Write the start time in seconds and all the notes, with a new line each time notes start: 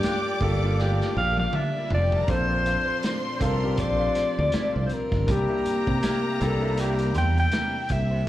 Already playing: G3 A#3 D4 F4 G4 A4 D5 D6
0.03 A#3 D4 F4, snare, closed hi-hat
0.40 G1 A#3 D4 F4 G4 A4, muted clean electric guitar stroke, kick, open hi-hat
0.62 A#3 D4 F4 A4
0.78 A#3 D4 F4 G4, snare
1.01 snare
1.16 A#1 A#3 D4 G4 F5
1.37 F5, muted clean electric guitar stroke, high tom
1.53 A#3 D4 F4 E5, mid tom
1.75 D4 D5
1.83 E4 E5
1.90 F1 F4 D5 F5, muted clean electric guitar stroke, floor tom
2.01 G4 G5
2.12 A#3 D4 G4 A4 A5, floor tom
2.20 A#4 A#5
2.25 A#1 F3 C4 D4 F4 A4 C5 D5 C6, kick, closed hi-hat
2.29 A#2 C5
2.65 A3 D4 F4, closed hi-hat
3.03 snare, closed hi-hat
3.25 muted clean electric guitar stroke
3.36 A3 C4 C5
3.40 C2 D4 F4 A4 A#4, kick, closed hi-hat
3.61 C4 D4 F4 G4, muted clean electric guitar stroke
3.77 A#1 D5, muted clean electric guitar stroke, kick, closed hi-hat
3.99 A3 D4 F4
4.15 snare, closed hi-hat
4.37 D2, muted clean electric guitar stroke
4.52 G#3 C#4 E4, muted fingered electric bass stroke, snare, closed hi-hat
4.67 A3 D4 F4
4.76 C2
4.86 C5, muted clean electric guitar stroke, closed hi-hat
4.93 A#4
5.12 G1, muted clean electric guitar stroke, kick, snare
5.27 C2 C3 G3 A#3 D4 E4 G4 A#5, muted clean electric guitar stroke, kick, closed hi-hat
5.31 G4
5.48 C4 E4 A#4
5.66 muted fingered electric bass stroke, closed hi-hat
5.86 C3, muted clean electric guitar stroke, kick
6.02 C4 E4 A#4, snare, closed hi-hat
6.39 C2 A#3 D4 E4 G4 A4, muted clean electric guitar stroke, closed hi-hat
6.61 A#3 C4 D4 E4 G4 A#4
6.76 C4 E4 G4 A#4, closed hi-hat
6.99 closed hi-hat
7.14 E2 C4 E4 C5 G5, closed hi-hat
7.36 G5, muted clean electric guitar stroke, closed hi-hat
7.51 C4 E4 A#4, snare, closed hi-hat
7.89 C2 E5, muted clean electric guitar stroke, kick, closed hi-hat
8.11 C4 E4 C5